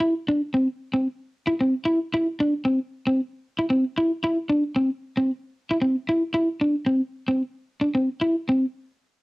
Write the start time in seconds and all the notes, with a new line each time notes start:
0.00 E4
0.29 D4
0.54 C4
0.94 C4
1.47 E4
1.61 C4
1.85 E4
2.14 E4
2.40 D4
2.65 C4
3.07 C4
3.59 E4
3.70 C4
3.97 E4
4.24 E4
4.49 D4
4.76 C4
5.17 C4
5.71 E4
5.82 C4
6.09 E4
6.34 E4
6.61 D4
6.87 C4
7.28 C4
7.81 D4
7.95 C4
8.21 E4
8.49 C4